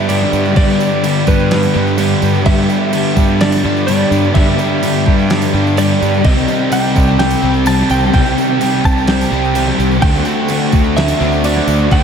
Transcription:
Already playing: picked electric bass G2, overdriven electric guitar G3 D4 G4
0.08 distorted electric guitar G2 D3 G3, overdriven electric guitar G3 B3 D4 G4, clean electric guitar D5, tambourine, crash
0.21 snare
0.32 picked electric bass G2, overdriven electric guitar B3 D4 G4, tambourine
0.45 tambourine
0.55 distorted electric guitar G2 D3 G3, picked electric bass G2, overdriven electric guitar G3 B3 D4 G4, clean electric guitar D5, kick, tambourine, crash
0.70 tambourine
0.79 overdriven electric guitar B3 D4 G4, tambourine
1.03 distorted electric guitar G2 D3 G3, overdriven electric guitar G3 B3 D4 G4, tambourine, crash
1.27 picked electric bass G2, overdriven electric guitar B3 D4 G4, clean electric guitar B4, kick, tambourine
1.40 tambourine
1.50 distorted electric guitar G2 D3 G3, snare, tambourine, crash
1.63 tambourine
1.74 picked electric bass G2, overdriven electric guitar G2, distorted electric guitar D3 G3, tambourine
1.87 tambourine
1.97 distorted electric guitar G2 D3 G3, overdriven electric guitar G3 B3 D4 G4, tambourine, crash
2.22 picked electric bass G2, overdriven electric guitar B3 D4 G4, tambourine
2.35 tambourine
2.45 distorted electric guitar G2 D3 G3, picked electric bass G2, overdriven electric guitar G3 B3 D4 G4, clean electric guitar E5, kick, tambourine, crash
2.58 tambourine
2.69 overdriven electric guitar B3 D4 G4, tambourine
2.93 distorted electric guitar G2 D3 G3, overdriven electric guitar G3 B3 D4 G4, tambourine, crash
3.16 picked electric bass G2, overdriven electric guitar B3 D4 G4, kick, tambourine
3.28 tambourine
3.40 distorted electric guitar G2 D3 G3, clean electric guitar D5, snare, tambourine, crash
3.52 tambourine
3.64 picked electric bass G2, overdriven electric guitar G2, distorted electric guitar D3 G3, tambourine
3.77 tambourine
3.87 distorted electric guitar G2 D3 G3, overdriven electric guitar G3 B3 D4 G4, clean electric guitar D5, tambourine, crash
4.11 picked electric bass G2, overdriven electric guitar B3 D4 G4, tambourine
4.24 tambourine
4.34 distorted electric guitar G2 D3 G3, picked electric bass G2, overdriven electric guitar G3 B3 D4 G4, clean electric guitar E5, kick, tambourine, crash
4.59 overdriven electric guitar B3 D4 G4, tambourine
4.82 distorted electric guitar G2 D3 G3, overdriven electric guitar G3 B3 D4 G4, tambourine, crash
4.96 tambourine
5.06 picked electric bass G2, overdriven electric guitar B3 D4 G4, kick
5.19 tambourine
5.29 distorted electric guitar G2 D3 G3, snare, tambourine, crash
5.42 tambourine
5.53 picked electric bass G2, overdriven electric guitar G2, distorted electric guitar D3 G3, tambourine
5.67 tambourine
5.75 distorted electric guitar G2 D3 G3, overdriven electric guitar G3 B3 D4 G4, clean electric guitar D5, tambourine, crash
6.01 picked electric bass G2, overdriven electric guitar B3 D4 G4, tambourine
6.14 tambourine
6.23 picked electric bass C2, distorted electric guitar C3 G3 C4, overdriven electric guitar C3 D#3 G3 C4 G4, clean electric guitar D#5, kick, tambourine, crash
6.38 tambourine
6.47 overdriven electric guitar G3 C4 G4, tambourine
6.70 distorted electric guitar C3 G3 C4, overdriven electric guitar D#3 G3 C4 G4, clean electric guitar G5, tambourine, crash
6.95 picked electric bass C2, overdriven electric guitar G3 C4 G4, kick, tambourine
7.07 tambourine
7.17 distorted electric guitar C3 G3 C4, clean electric guitar G5, snare, tambourine, crash
7.30 tambourine
7.42 picked electric bass C2, overdriven electric guitar C3, distorted electric guitar G3 C4
7.54 tambourine
7.65 distorted electric guitar C3 G3 C4, overdriven electric guitar D#3 G3 C4 G4, clean electric guitar A5, tambourine, crash
7.79 snare
7.90 picked electric bass C2, overdriven electric guitar G3 C4 G4, clean electric guitar G5, tambourine
8.03 tambourine
8.12 picked electric bass C2, distorted electric guitar C3 G3 C4, overdriven electric guitar C3 D#3 G3 C4 G4, clean electric guitar G5, kick, tambourine, crash
8.26 tambourine
8.36 overdriven electric guitar G3 C4 G4, tambourine
8.59 distorted electric guitar C3 G3 C4, overdriven electric guitar D#3 G3 C4 G4, tambourine, crash
8.84 picked electric bass C2, overdriven electric guitar G3 C4 G4, clean electric guitar A5, kick, tambourine
8.98 tambourine
9.07 distorted electric guitar C3 G3 C4, clean electric guitar G5, snare, tambourine, crash
9.21 tambourine
9.29 picked electric bass C2, overdriven electric guitar C3, distorted electric guitar G3 C4
9.45 tambourine
9.54 distorted electric guitar C3 G3 C4, overdriven electric guitar D#3 G3 C4 G4, tambourine, crash
9.68 snare
9.78 picked electric bass C2, overdriven electric guitar G3 C4 G4, tambourine
9.91 tambourine
10.01 picked electric bass D2, distorted electric guitar D3 A3 D4, overdriven electric guitar D3 A3 C4 F#4, clean electric guitar G5, kick, tambourine, crash
10.15 tambourine
10.25 overdriven electric guitar A3 C4 F#4, tambourine
10.48 distorted electric guitar D3 A3 D4, overdriven electric guitar D3 A3 C4 F#4, tambourine, crash
10.72 picked electric bass D2, overdriven electric guitar A3 C4 F#4, kick, tambourine
10.84 tambourine
10.96 distorted electric guitar D3 A3 D4, clean electric guitar E5, snare, tambourine, crash
11.08 tambourine
11.20 picked electric bass D2, overdriven electric guitar D3, distorted electric guitar A3 D4, tambourine
11.33 tambourine
11.43 overdriven electric guitar D3 A3 C4 F#4, distorted electric guitar D3 A3 D4, clean electric guitar D5, tambourine, crash
11.57 snare
11.67 picked electric bass D2, overdriven electric guitar A3 C4 F#4, tambourine
11.80 tambourine
11.90 picked electric bass D2, distorted electric guitar D3 A3 D4, overdriven electric guitar D3 A3 C4 F#4, clean electric guitar G5, kick, tambourine, crash

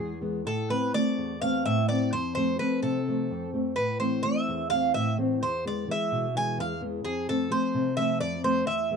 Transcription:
Already playing: nylon-string guitar E2 E3 G#3 B3, bouzouki G#4
0.21 nylon-string guitar E3 G#3 B3
0.45 nylon-string guitar A2, bouzouki A4
0.69 nylon-string guitar A3 B3 C4, bouzouki B4
0.94 nylon-string guitar A3 B3 C4, bouzouki D5
1.18 nylon-string guitar E2
1.41 nylon-string guitar A3 B3 C4, bouzouki F5
1.66 nylon-string guitar A2, bouzouki E5
1.89 nylon-string guitar A3 B3 C4, bouzouki D5
2.13 nylon-string guitar F2, bouzouki C5
2.35 nylon-string guitar F3 A3 C4, bouzouki C5
2.59 nylon-string guitar F3 A3 C4, bouzouki B4
2.83 nylon-string guitar C3, bouzouki A4
3.08 nylon-string guitar F3 A3 C4
3.31 nylon-string guitar F2
3.53 nylon-string guitar F3 A3 C4
3.76 nylon-string guitar A2, bouzouki B4
4.00 nylon-string guitar E3 A3 C4, bouzouki C5
4.23 nylon-string guitar E3 A3 C4, bouzouki E5
4.48 nylon-string guitar E2
4.70 nylon-string guitar E3 A3 C4, bouzouki F5
4.94 nylon-string guitar A2, bouzouki E5
5.18 nylon-string guitar E3 A3 C4
5.42 nylon-string guitar E2, bouzouki C5
5.65 nylon-string guitar E3 G#3 B3, bouzouki D5
5.88 nylon-string guitar E3 G#3 B3, bouzouki E5
6.12 nylon-string guitar B2
6.35 nylon-string guitar E3 G#3 B3, bouzouki G#5
6.58 nylon-string guitar E2, bouzouki F5
6.81 nylon-string guitar E3 G#3 B3
7.04 nylon-string guitar F2, bouzouki G#4
7.28 nylon-string guitar F3 A3 C4, bouzouki A4
7.50 nylon-string guitar F3 A3 C4, bouzouki C5
7.74 nylon-string guitar C3
7.97 nylon-string guitar F3 A3 C4, bouzouki E5
8.21 nylon-string guitar F2, bouzouki D5
8.44 nylon-string guitar F3 A3 C4, bouzouki C5
8.67 nylon-string guitar E2, bouzouki E5
8.91 nylon-string guitar E3 G#3 B3

